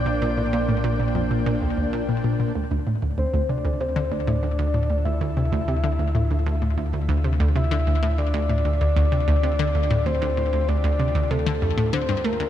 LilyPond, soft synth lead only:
\new Staff \with { instrumentName = "Soft synth lead" } { \time 4/4 \key d \minor \tempo 4 = 96 d''2. r4 | r4 c''8 d''8 c''8 d''4. | e''2.~ e''8 r8 | e''4 d''4 d''2 |
c''4 d''4 a'4 c''8 bes'8 | }